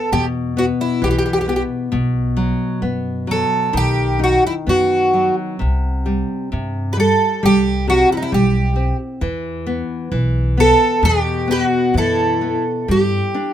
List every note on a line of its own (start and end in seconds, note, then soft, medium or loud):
0.00 0.11 B3 soft
0.00 0.12 A4 medium
0.12 0.71 E2 medium
0.12 1.89 B2 medium
0.12 0.25 G4 medium
0.57 1.01 B3 soft
0.57 0.64 F#4 medium
0.81 1.03 E4 medium
1.02 1.61 B1 medium
1.02 1.46 E3 medium
1.02 1.09 G4 medium
1.11 1.17 G4 medium
1.18 1.25 G4 medium
1.26 1.32 G4 soft
1.33 1.39 G4 medium
1.41 1.47 G4 soft
1.48 1.91 B3 soft
1.48 1.54 G4 medium
1.56 1.62 G4 soft
1.92 2.51 B1 medium
1.92 3.70 B2 medium
2.37 2.81 F#3 medium
2.82 3.42 F#2 medium
2.82 3.26 B3 soft
3.27 3.73 F#3 soft
3.27 3.77 A4 medium
3.73 4.34 B1 medium
3.73 5.56 D#3 medium
3.77 4.19 G4 medium
4.19 4.65 D#4 soft
4.24 4.46 F#4 medium
4.47 4.53 E4 medium
4.67 5.28 F#2 medium
4.67 5.12 B3 medium
4.67 5.34 F#4 medium
5.14 5.59 F#3 soft
5.59 6.21 C2 medium
5.59 6.51 C3 soft
6.06 6.51 G3 soft
6.52 7.12 G2 medium
6.52 6.96 C3 soft
6.93 6.99 B4 medium
6.97 7.41 G3 soft
6.97 7.45 A4 medium
7.43 8.02 C2 medium
7.43 8.31 G3 medium
7.43 7.89 G4 medium
7.87 8.31 C3 soft
7.87 8.10 F#4 medium
8.12 8.15 E4 medium
8.17 8.22 D#4 soft
8.22 8.32 E4 medium
8.32 8.91 B1 medium
8.32 8.75 G3 medium
8.32 8.96 G4 medium
8.76 9.20 C4 soft
9.21 9.80 E2 medium
9.21 10.10 E3 medium
9.67 10.11 B3 medium
10.12 10.71 B1 medium
10.12 10.56 E3 medium
10.57 11.01 B3 medium
10.57 11.05 A4 medium
11.02 11.62 E2 medium
11.02 12.84 B2 medium
11.02 11.51 G4 medium
11.48 11.93 B3 soft
11.48 11.62 G4 medium
11.52 11.64 B4 medium
11.62 11.97 F#4 medium
11.94 12.56 F#2 medium
11.94 12.40 E3 soft
11.94 12.63 E4 medium
11.98 12.91 A4 medium
12.41 12.87 B3 soft
12.88 13.19 G2 medium
12.88 13.53 G3 medium
12.88 13.53 G4 medium
13.35 13.53 D4 soft